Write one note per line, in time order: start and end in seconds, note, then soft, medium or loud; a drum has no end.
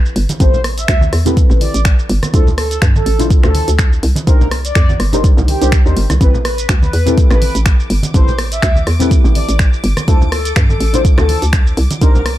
0.00 0.12 A1 medium
0.00 0.37 C4 medium
0.00 0.37 E4 medium
0.00 0.38 G4 medium
0.00 0.38 A4 medium
0.00 0.38 B4 medium
0.00 impact medium
0.06 shaker soft
0.16 0.27 G1 loud
0.16 open hi-hat medium
0.29 closed hi-hat medium
0.29 high conga medium
0.29 shaker medium
0.40 0.85 A1 loud
0.40 0.53 C4 medium
0.40 0.53 E4 medium
0.40 0.54 G4 medium
0.40 0.54 A4 medium
0.40 0.54 B4 medium
0.40 0.60 C5 loud
0.40 kick loud
0.40 closed hi-hat medium
0.40 shaker medium
0.54 low conga medium
0.54 shaker soft
0.64 cross-stick medium
0.64 open hi-hat loud
0.78 1.03 E5 loud
0.78 closed hi-hat medium
0.78 shaker medium
0.88 1.08 D2 loud
0.88 finger snap loud
0.88 kick loud
0.88 closed hi-hat medium
0.88 shaker medium
1.01 high conga loud
1.01 shaker soft
1.13 1.46 E2 medium
1.13 cross-stick medium
1.13 open hi-hat loud
1.25 2.31 C4 medium
1.25 2.31 E4 medium
1.25 2.31 G4 medium
1.25 2.31 A4 medium
1.25 2.32 B4 medium
1.25 closed hi-hat medium
1.25 low conga medium
1.25 shaker medium
1.37 kick loud
1.37 closed hi-hat medium
1.37 shaker medium
1.50 1.69 A1 loud
1.50 low conga medium
1.50 shaker soft
1.61 1.81 D5 loud
1.61 open hi-hat loud
1.61 high conga medium
1.74 2.06 A1 medium
1.74 closed hi-hat medium
1.74 shaker medium
1.85 finger snap loud
1.85 kick loud
1.85 closed hi-hat medium
1.85 shaker medium
1.99 shaker soft
2.10 2.20 G1 loud
2.10 open hi-hat medium
2.23 cross-stick medium
2.23 closed hi-hat medium
2.23 high conga medium
2.23 shaker medium
2.33 2.79 D2 loud
2.33 2.47 D4 medium
2.33 2.47 E4 medium
2.33 2.47 F4 medium
2.33 2.48 A4 loud
2.33 2.47 A4 medium
2.33 2.47 C5 medium
2.33 kick loud
2.33 closed hi-hat medium
2.33 shaker medium
2.47 low conga loud
2.47 shaker soft
2.58 2.78 A4 loud
2.58 cross-stick medium
2.58 open hi-hat loud
2.71 closed hi-hat medium
2.71 shaker medium
2.82 3.02 G2 loud
2.82 finger snap loud
2.82 kick loud
2.82 closed hi-hat medium
2.82 shaker medium
2.95 3.21 A4 medium
2.95 high conga loud
2.95 shaker soft
3.06 3.39 A1 medium
3.06 open hi-hat loud
3.19 4.24 D4 medium
3.19 4.24 E4 medium
3.19 4.25 F4 medium
3.19 4.25 A4 medium
3.19 4.25 C5 medium
3.19 closed hi-hat medium
3.19 low conga medium
3.19 shaker medium
3.30 kick loud
3.30 closed hi-hat medium
3.30 shaker medium
3.43 3.63 D2 loud
3.43 3.69 A4 loud
3.43 finger snap soft
3.43 cross-stick medium
3.43 low conga loud
3.43 shaker soft
3.55 open hi-hat loud
3.55 high conga medium
3.68 4.00 D2 medium
3.68 closed hi-hat medium
3.68 shaker medium
3.79 finger snap loud
3.79 kick loud
3.79 closed hi-hat medium
3.79 shaker medium
3.93 shaker soft
4.03 4.14 C2 loud
4.03 open hi-hat loud
4.16 closed hi-hat medium
4.16 high conga loud
4.16 shaker medium
4.27 4.72 C2 loud
4.27 4.40 D4 medium
4.27 4.41 D#4 medium
4.27 4.41 G4 medium
4.27 4.47 A#4 loud
4.27 4.41 A#4 medium
4.27 4.41 C5 medium
4.27 kick loud
4.27 closed hi-hat medium
4.27 shaker medium
4.41 low conga medium
4.41 shaker soft
4.51 cross-stick medium
4.51 open hi-hat loud
4.65 4.90 D5 loud
4.65 closed hi-hat medium
4.65 shaker medium
4.75 4.95 F2 loud
4.75 finger snap loud
4.75 kick loud
4.75 closed hi-hat medium
4.75 shaker medium
4.89 high conga loud
4.89 shaker soft
5.00 5.33 G1 medium
5.00 cross-stick medium
5.00 open hi-hat medium
5.13 5.59 D4 medium
5.13 5.59 D#4 medium
5.13 5.59 G4 medium
5.13 5.59 A#4 medium
5.13 5.59 C5 loud
5.13 closed hi-hat medium
5.13 low conga medium
5.13 shaker medium
5.24 kick loud
5.24 closed hi-hat medium
5.24 shaker medium
5.37 5.56 C2 loud
5.37 low conga loud
5.37 shaker soft
5.48 5.68 G4 medium
5.48 open hi-hat loud
5.48 high conga medium
5.61 5.85 C2 medium
5.61 5.72 D4 medium
5.61 5.72 D#4 medium
5.61 5.73 G4 medium
5.61 5.73 A#4 medium
5.61 5.73 C5 medium
5.61 closed hi-hat medium
5.61 shaker medium
5.72 finger snap loud
5.72 kick loud
5.72 closed hi-hat medium
5.72 shaker medium
5.85 5.94 D#2 medium
5.85 5.97 D4 medium
5.85 5.97 D#4 medium
5.85 5.97 G4 medium
5.85 5.97 A#4 medium
5.85 5.97 C5 loud
5.85 shaker soft
5.97 6.07 G1 loud
5.97 open hi-hat medium
6.10 6.19 C2 loud
6.10 cross-stick medium
6.10 closed hi-hat medium
6.10 high conga medium
6.10 shaker medium
6.20 6.66 A1 loud
6.20 6.34 C4 medium
6.20 6.34 E4 medium
6.20 6.34 G4 medium
6.20 6.34 A4 medium
6.20 6.35 B4 loud
6.20 6.34 B4 medium
6.20 12.38 D6 medium
6.20 kick loud
6.20 closed hi-hat medium
6.20 shaker medium
6.34 low conga medium
6.34 shaker soft
6.45 6.65 B4 loud
6.45 cross-stick medium
6.45 open hi-hat loud
6.58 closed hi-hat medium
6.58 shaker medium
6.69 6.89 D2 loud
6.69 finger snap loud
6.69 kick loud
6.69 closed hi-hat medium
6.69 shaker medium
6.82 7.08 B4 loud
6.82 high conga medium
6.82 shaker soft
6.93 7.27 E2 medium
6.93 open hi-hat medium
7.06 8.11 C4 medium
7.06 8.11 E4 medium
7.06 8.12 G4 medium
7.06 8.12 A4 medium
7.06 8.12 B4 loud
7.06 closed hi-hat medium
7.06 low conga medium
7.06 shaker medium
7.18 kick loud
7.18 closed hi-hat medium
7.18 shaker medium
7.31 7.50 A1 loud
7.31 7.56 B4 loud
7.31 finger snap soft
7.31 cross-stick medium
7.31 low conga medium
7.31 shaker soft
7.42 open hi-hat loud
7.42 high conga medium
7.55 7.87 A1 medium
7.55 closed hi-hat medium
7.55 shaker medium
7.66 finger snap loud
7.66 kick loud
7.66 closed hi-hat medium
7.66 shaker medium
7.80 shaker soft
7.90 8.01 G1 loud
7.90 open hi-hat medium
8.03 closed hi-hat medium
8.03 high conga loud
8.03 shaker medium
8.14 8.59 A1 loud
8.14 8.28 C4 medium
8.14 8.28 E4 medium
8.14 8.28 G4 medium
8.14 8.28 A4 medium
8.14 8.28 B4 medium
8.14 8.34 C5 loud
8.14 kick loud
8.14 closed hi-hat medium
8.14 shaker medium
8.28 low conga medium
8.28 shaker soft
8.39 cross-stick medium
8.39 open hi-hat loud
8.52 8.77 E5 loud
8.52 closed hi-hat medium
8.52 shaker medium
8.62 8.83 D2 loud
8.62 finger snap loud
8.62 kick loud
8.62 closed hi-hat medium
8.62 shaker medium
8.76 high conga medium
8.76 shaker soft
8.87 9.20 E2 medium
8.87 cross-stick medium
8.87 open hi-hat medium
8.99 10.05 C4 medium
8.99 10.05 E4 medium
8.99 10.05 G4 medium
8.99 10.06 A4 medium
8.99 10.06 B4 loud
8.99 closed hi-hat medium
8.99 low conga medium
8.99 shaker medium
9.11 kick loud
9.11 closed hi-hat medium
9.11 shaker medium
9.24 9.43 A1 loud
9.24 low conga medium
9.24 shaker soft
9.35 9.55 D5 loud
9.35 open hi-hat loud
9.35 high conga medium
9.49 9.80 A1 loud
9.49 closed hi-hat medium
9.49 shaker medium
9.59 finger snap loud
9.59 kick loud
9.59 closed hi-hat medium
9.59 shaker medium
9.73 shaker soft
9.84 9.94 G1 loud
9.84 open hi-hat medium
9.97 cross-stick medium
9.97 closed hi-hat medium
9.97 high conga medium
9.97 shaker medium
10.07 10.53 D2 loud
10.07 10.21 D4 medium
10.07 10.21 E4 medium
10.07 10.21 F4 medium
10.07 10.22 A4 loud
10.07 10.21 A4 medium
10.07 10.22 C5 medium
10.07 kick loud
10.07 closed hi-hat medium
10.07 shaker medium
10.21 low conga medium
10.21 shaker soft
10.32 10.52 A4 loud
10.32 cross-stick medium
10.32 open hi-hat loud
10.45 closed hi-hat medium
10.45 shaker medium
10.56 10.76 G2 loud
10.56 finger snap loud
10.56 kick loud
10.56 closed hi-hat medium
10.56 shaker medium
10.69 10.95 A4 loud
10.69 high conga medium
10.69 shaker soft
10.81 11.14 A1 medium
10.81 open hi-hat medium
10.93 11.98 D4 medium
10.93 11.99 E4 medium
10.93 11.99 F4 medium
10.93 11.99 A4 medium
10.93 11.99 C5 medium
10.93 closed hi-hat medium
10.93 low conga medium
10.93 shaker medium
11.05 kick loud
11.05 closed hi-hat medium
11.05 shaker medium
11.18 11.37 D2 loud
11.18 11.43 A4 loud
11.18 finger snap soft
11.18 cross-stick medium
11.18 low conga loud
11.18 shaker soft
11.29 open hi-hat loud
11.29 high conga medium
11.42 11.74 D2 medium
11.42 closed hi-hat medium
11.42 shaker medium
11.53 finger snap loud
11.53 kick loud
11.53 closed hi-hat medium
11.53 shaker medium
11.67 shaker soft
11.77 11.88 C2 loud
11.77 open hi-hat medium
11.91 closed hi-hat medium
11.91 high conga medium
11.91 shaker medium
12.01 12.38 C2 loud
12.01 12.15 D4 medium
12.01 12.15 D#4 medium
12.01 12.15 G4 medium
12.01 12.21 A#4 loud
12.01 12.15 A#4 medium
12.01 12.15 C5 medium
12.01 kick loud
12.01 closed hi-hat medium
12.01 shaker medium
12.15 low conga loud
12.15 shaker soft
12.26 cross-stick medium
12.26 open hi-hat loud